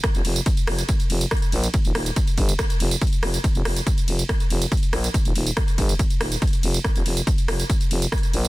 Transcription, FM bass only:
\new Staff \with { instrumentName = "FM bass" } { \clef bass \time 4/4 \key ees \mixolydian \tempo 4 = 141 r16 f,,16 f,,16 r8. f,,16 r8. f,,16 r8. bes,,16 r16 | r16 ees,,16 ees,,16 r8. g,,16 r8. f,,16 r8. f,,16 r16 | r16 f,,16 f,,16 r8. f,,16 r8. f,,16 r8. bes,,16 r16 | r16 ees,,16 ees,,16 r8. g,,16 r8. ees,,16 r8. f,,16 r16 |
r16 f,,16 f,,16 r8. f,,16 r8. f,,16 r8. bes,,16 r16 | }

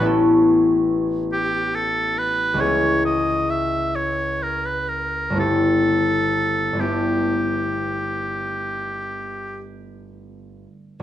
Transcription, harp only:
\new Staff \with { instrumentName = "Harp" } { \time 12/8 \key g \lydian \tempo 4. = 43 <a,, b cis' e' a'>2. <cis, ais cis' e' gis'>2. | <g,, a b e' g'>4. <g,, a b e' g'>1~ <g,, a b e' g'>8 | }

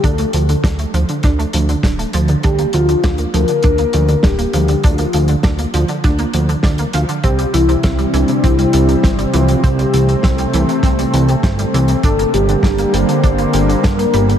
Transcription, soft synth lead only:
\new Staff \with { instrumentName = "Soft synth lead" } { \time 4/4 \key bes \lydian \tempo 4 = 100 a'4 r2. | g'8 f'4 bes'4. g'4 | f'4 r2. | g'8 e'4 d'8 e'4. f'8 |
r1 | a'8 g'4 c''4. bes'4 | }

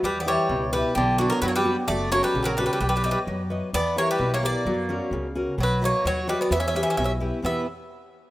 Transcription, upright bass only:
\new Staff \with { instrumentName = "Upright bass" } { \clef bass \time 2/4 \tempo 4 = 130 e,4 cis,4 | b,,4 fis,4 | fis,,4 ais,,4 | b,,4 fis,4 |
e,4 b,,4 | fis,4 cis,4 | b,,4 dis,4 | e,4 b,,4 |
e,8 r4. | }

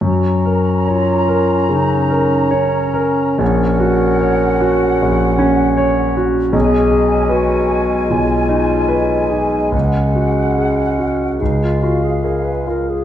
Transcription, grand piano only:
\new Staff \with { instrumentName = "Grand piano" } { \time 4/4 \key fis \major \tempo 4 = 73 fis,8 ais'8 cis''8 ais'8 cis8 ais'8 cis''8 ais'8 | ais,,8 fis'8 cis''8 fis'8 ais,,8 cis'8 cis''8 fis'8 | b,,8 gis'8 b'8 gis'8 b,,8 dis'8 b'8 gis'8 | cis,8 fis'8 gis'8 fis'8 cis,8 eis'8 gis'8 eis'8 | }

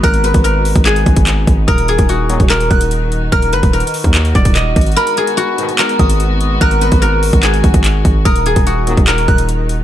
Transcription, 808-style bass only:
\new Staff \with { instrumentName = "808-style bass" } { \clef bass \time 4/4 \key ees \minor \tempo 4 = 146 aes,,8. aes,,4 aes,,8. aes,,4 aes,,8 | ees,,8. ees,,4 ees,,8. ees,,4. | ees,,8 ges,,16 ees,,8 r8 ees,8. ees,,4 aes,,8 | r2 r8 aes,,4. |
aes,,8. aes,,4 aes,,8. aes,,16 aes,,8. aes,,8 | ees,,8. ees,,4 ees,,8. ees,,4. | }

